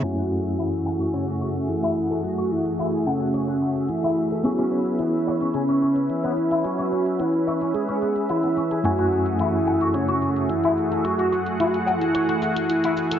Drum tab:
HH |x--xx--xxx-xxx-x|xx-xxx-xxx-xxx-x|xx-xx--xxx-xxx-x|xx-xxx-xxx-xxx-x|
SH |--xx--xx--xx--xx|x-xxx-xxx-xx--xx|--xxx-xxx-xxx-xx|x-xxx-xxx-xxx-xx|

HH |xx-xx--xxx-xxx-x|xx-xxx-xxx-xxx-x|
SH |x-xxx-xxx-xxx-xx|x-xxx-xxx-xxx-xx|